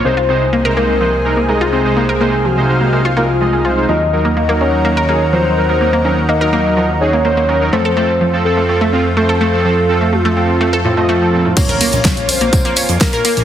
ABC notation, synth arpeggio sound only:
X:1
M:4/4
L:1/16
Q:1/4=125
K:Bbm
V:1 name="Synth arpeggio sound"
B, F C z B, B B, z F, z2 B, B, F C z | B, B B, z F, z2 B, B, F B, z F, A, F z | F, z2 B, B, B, D z B, B B, z F, z2 B, | B, B, D z B, B B, z F, z2 B, B, B, D z |
=A, =A A, z F, z2 A, A, A, C z A, A A, z | F, z2 =A, A, A, C z A, =A =A,, A, A, z2 A,, | B, B B, z F, z2 B, B, B, D z B, B B, z |]